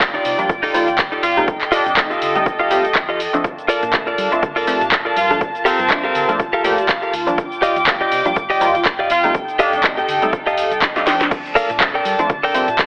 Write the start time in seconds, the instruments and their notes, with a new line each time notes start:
Already playing: fingered electric bass D#2, string section F4 D5 G5
0.00 analog polysynth F3 G3 A#3 D4, kick, clap, closed hi-hat, shaker
0.14 clean electric guitar D#4 F4 G4 D5, closed hi-hat
0.25 fingered electric bass C3, open hi-hat, shaker
0.38 analog polysynth F3 G3 A#3 D4, closed hi-hat, shaker
0.49 fingered electric bass G2, kick, closed hi-hat, shaker
0.63 fingered electric bass A#1, clean electric guitar D#4 F4 G4 A4, open hi-hat
0.74 analog polysynth F3 G3 A#3 F4, open hi-hat, shaker
0.88 fingered electric bass D#2, closed hi-hat, shaker
0.98 kick, clap, closed hi-hat, shaker
1.12 clean electric guitar D#4 F4 G4 A4, closed hi-hat
1.23 fingered electric bass F2, horn section F4, open hi-hat, shaker
1.37 analog polysynth G3 A3 C4 D#4, muted clean electric guitar stroke, closed hi-hat, shaker
1.47 string section A4 D#5, kick, closed hi-hat, shaker
1.61 clap, closed hi-hat, shaker
1.72 horn section D4, clean electric guitar F4 G4 A4 D#5, open hi-hat, shaker
1.86 fingered electric bass F2, horn section D4, closed hi-hat, shaker
1.97 analog polysynth G3 A3 C4 D#4, muted clean electric guitar stroke, kick, clap, closed hi-hat, shaker
2.10 clean electric guitar F4 G4 A4 F5, closed hi-hat, shaker
2.22 fingered electric bass D3, open hi-hat, shaker
2.35 analog polysynth G3 A3 C4 D#4, closed hi-hat, shaker
2.46 kick, closed hi-hat, shaker
2.59 fingered electric bass F1, clean electric guitar F4 G4 A4 F5, closed hi-hat
2.70 analog polysynth G3 A3 C4 G4, open hi-hat, shaker
2.84 muted fingered electric bass stroke, closed hi-hat, shaker
2.95 fingered electric bass F2, kick, clap, closed hi-hat, shaker
3.09 clean electric guitar F4 G4 A4 D#5, closed hi-hat
3.20 open hi-hat, shaker
3.33 analog polysynth F3 A3 C4 D4, muted clean electric guitar stroke, closed hi-hat, shaker
3.44 string section A#3 D4 A5, kick, closed hi-hat, shaker
3.58 closed hi-hat, shaker
3.68 clean electric guitar F4 A4 A#4 D5, open hi-hat, shaker
3.83 fingered electric bass A#2, closed hi-hat, shaker
3.93 analog polysynth F3 A3 C4 D4, kick, clap, closed hi-hat, shaker
4.07 clean electric guitar F4 A4 A#4 D5, closed hi-hat
4.18 fingered electric bass G3, open hi-hat, shaker
4.32 analog polysynth F3 A3 C4 D4, closed hi-hat, shaker
4.43 fingered electric bass D3, kick, closed hi-hat, shaker
4.56 fingered electric bass F2, clean electric guitar F4 A4 A#4 D5, open hi-hat
4.67 analog polysynth F3 A3 C4 G4, open hi-hat, shaker
4.81 fingered electric bass A#2, closed hi-hat, shaker
4.92 kick, clap, closed hi-hat, shaker
5.05 clean electric guitar F4 A4 A#4 D5, closed hi-hat
5.16 fingered electric bass G2, horn section F4, open hi-hat, shaker
5.30 analog polysynth F3 A3 A#3 D4, muted clean electric guitar stroke, closed hi-hat, shaker
5.41 string section F4, kick, closed hi-hat, shaker
5.55 closed hi-hat, shaker
5.65 horn section C4, clean electric guitar G4 A4 A#4 F5, open hi-hat, shaker
5.79 fingered electric bass G2, closed hi-hat, shaker
5.90 analog polysynth F3 A3 A#3 D4, kick, clap, closed hi-hat, shaker
6.04 clean electric guitar G4 A4 A#4 F5, closed hi-hat
6.15 fingered electric bass D3, open hi-hat, shaker
6.28 analog polysynth F3 A3 A#3 D4, closed hi-hat, shaker
6.40 kick, closed hi-hat, shaker
6.53 clean electric guitar G4 A4 A#4 F5, closed hi-hat
6.64 analog polysynth F3 A3 A#3 G4, clean electric guitar D5, open hi-hat, shaker
6.78 closed hi-hat, shaker
6.89 clean electric guitar F5, kick, clap, closed hi-hat, shaker
7.02 clean electric guitar G4 A4 A#4 F5, closed hi-hat
7.13 fingered electric bass D#2, open hi-hat, shaker
7.26 analog polysynth F3 G3 A#3 D4, muted clean electric guitar stroke, closed hi-hat, shaker
7.37 string section G5 D6, kick, closed hi-hat, shaker
7.52 closed hi-hat, shaker
7.62 clean electric guitar G4 D5 D#5 F5, open hi-hat, shaker
7.76 fingered electric bass D#2, closed hi-hat, shaker
7.87 analog polysynth F3 G3 A#3 D4, kick, clap, closed hi-hat, shaker
8.01 clean electric guitar G4 D5 D#5 G5, closed hi-hat
8.12 fingered electric bass C3, open hi-hat, shaker
8.25 analog polysynth F3 G3 A#3 D4, closed hi-hat, shaker
8.36 fingered electric bass G2, kick, closed hi-hat, shaker
8.50 fingered electric bass A#1, clean electric guitar G4 D5 D#5 G5, open hi-hat
8.60 analog polysynth F3 G3 A#3 F4, open hi-hat, shaker
8.74 fingered electric bass D#2, closed hi-hat, shaker
8.85 kick, clap, closed hi-hat, shaker
8.99 clean electric guitar G4 D5 D#5 F5, closed hi-hat
9.10 fingered electric bass F2, horn section F4, open hi-hat, shaker
9.23 analog polysynth G3 A3 C4 D#4, muted clean electric guitar stroke, closed hi-hat, shaker
9.34 string section D#4 A4, kick, closed hi-hat, shaker
9.48 closed hi-hat, shaker
9.59 horn section D4, clean electric guitar G4 A4 D#5 F5, open hi-hat, shaker
9.73 fingered electric bass F2, horn section D4, closed hi-hat, shaker
9.84 analog polysynth G3 A3 C4 D#4, kick, clap, closed hi-hat, shaker
9.97 clean electric guitar G4 A4 D#5 G5, closed hi-hat, shaker
10.08 fingered electric bass D3, open hi-hat, shaker
10.22 analog polysynth G3 A3 C4 D#4, closed hi-hat, shaker
10.33 kick, closed hi-hat, shaker
10.46 clean electric guitar G4 A4 D#5 F5, closed hi-hat, shaker
10.57 open hi-hat, shaker
10.71 fingered electric bass C2, closed hi-hat, shaker
10.82 clean electric guitar D#5, kick, snare, clap, closed hi-hat, shaker
10.95 analog polysynth G3 A3 C4 G4, clean electric guitar G4 A4 D#5 F5, snare, closed hi-hat, shaker
11.06 analog polysynth F3 A3 C4 D4, clean electric guitar G5, snare, open hi-hat, shaker
11.20 muted clean electric guitar stroke, snare, closed hi-hat, shaker
11.31 string section D4 A5, kick, closed hi-hat, crash, shaker
11.45 closed hi-hat, shaker
11.55 clean electric guitar A4 A#4 D5 F5, open hi-hat, shaker
11.70 fingered electric bass A#2, closed hi-hat, shaker
11.80 analog polysynth F3 A3 C4 D4, kick, clap, closed hi-hat, shaker
11.94 clean electric guitar A4 A#4 D5 G5, closed hi-hat
12.05 fingered electric bass G3, open hi-hat, shaker
12.19 analog polysynth F3 A3 C4 D4, closed hi-hat, shaker
12.30 fingered electric bass D3, kick, closed hi-hat, shaker
12.43 fingered electric bass F2, clean electric guitar A4 A#4 D5 G5, open hi-hat
12.54 analog polysynth F3 A3 C4 G4, open hi-hat, shaker
12.68 fingered electric bass A#2, closed hi-hat, shaker
12.79 kick, clap, closed hi-hat, shaker